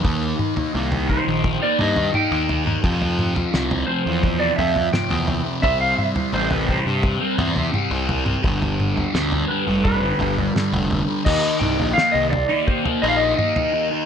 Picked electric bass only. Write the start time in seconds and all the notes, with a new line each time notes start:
0.04 D#2
0.75 C2
1.28 A#1
1.79 G2
2.31 D#2
2.84 F2
3.54 C2
4.06 E2
4.58 F2
5.11 E2
5.64 C2
6.33 A1
6.86 G2
7.38 E2
7.91 C2
8.45 G1
9.14 D2
9.68 F1
10.19 G1
10.73 F1
11.26 D#2
11.61 C2
11.79 A#1
12.14 C2
13.03 A#1